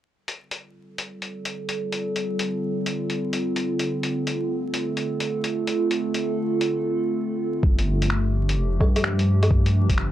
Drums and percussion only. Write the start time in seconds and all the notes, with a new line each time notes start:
0.28 closed hi-hat
0.51 closed hi-hat
0.98 closed hi-hat
1.22 closed hi-hat
1.45 closed hi-hat
1.69 closed hi-hat
1.92 closed hi-hat
2.16 closed hi-hat
2.39 closed hi-hat
2.86 closed hi-hat
3.10 closed hi-hat
3.33 closed hi-hat
3.56 closed hi-hat
3.79 closed hi-hat
4.03 closed hi-hat
4.27 closed hi-hat
4.74 closed hi-hat
4.97 closed hi-hat
5.20 closed hi-hat
5.44 closed hi-hat
5.67 closed hi-hat
5.91 closed hi-hat
6.14 closed hi-hat
6.61 closed hi-hat
7.63 kick
7.79 closed hi-hat
8.02 closed hi-hat
8.10 finger snap
8.49 closed hi-hat
8.80 kick, low woodblock
8.96 closed hi-hat, low woodblock
9.04 finger snap
9.19 closed hi-hat
9.43 closed hi-hat, low woodblock
9.51 kick
9.66 closed hi-hat
9.89 kick, closed hi-hat
9.98 finger snap